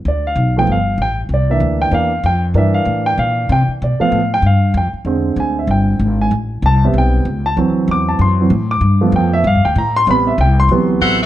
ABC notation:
X:1
M:4/4
L:1/8
Q:"Swing" 1/4=192
K:Gmix
V:1 name="Grand piano"
d f2 g f2 g z | d e2 g f2 g z | e f2 g f2 g z | d f2 g f2 g z |
z2 ^g e =g3 ^g | z2 a e g3 a | z2 d' a c'3 d' | z2 g e f g _b c' |
b e g c'2 z3 |]
V:2 name="Grand piano"
z3 [F,A,B,] z4 | z [E,_B,D]3 [E,B,D] z3 | [E,D_B]8 | z [F,A,B,] z6 |
[D,^G,^B,]8 | z3 [G,B,C]3 z2 | [E,^F,C]4- [E,F,C] [E,F,C] z2 | z [F,A,B,]3 z4 |
[C,G,B,] z3 [C,E,^F,B,]3 z |]
V:3 name="Saxophone section"
z8 | z8 | z8 | z8 |
z8 | z8 | z8 | z8 |
z6 [EAc^f] [C^FAe] |]
V:4 name="Upright bass" clef=bass
D,,2 B,,,2 G,,,2 A,,,2 | C,,2 D,,2 E,,2 F,,2 | G,,2 A,,2 _B,,2 C, z | B,, z A,,2 G,,2 F,, z |
E,,2 D,,2 G,,,2 ^G,,,2 | A,,,2 C,,2 B,,,2 ^C,,2 | D,,2 E,,2 ^F,,2 A,,2 | G,,2 F,,2 (3G,, F,, D,, A,,2 |
A,,,2 C,,2 D,,2 A,,,2 |]